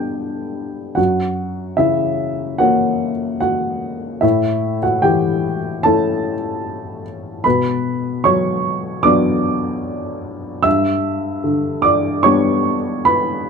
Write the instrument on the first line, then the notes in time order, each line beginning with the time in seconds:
upright piano
Already playing: G2 D3 G3 B3 D4 G4 D5 G5
0.95 F#2 F#4 F#5
1.77 C#3 E4 E5
2.58 A#3 C#4 F#4 F#5
3.40 F#4 F#5
4.21 A2 E4 E5
4.83 F#4 F#5
5.02 E3 G4 G5
5.83 A3 C#4 E4 A4 A5
7.44 B2 B4 B5
8.24 F#3 C#5 C#6
9.03 F#3 B3 D4 D5 D6
10.63 G2 E5 E6
11.44 D3
11.82 D5 D6
12.23 G3 B3 D4 C#5 C#6
13.05 B4 B5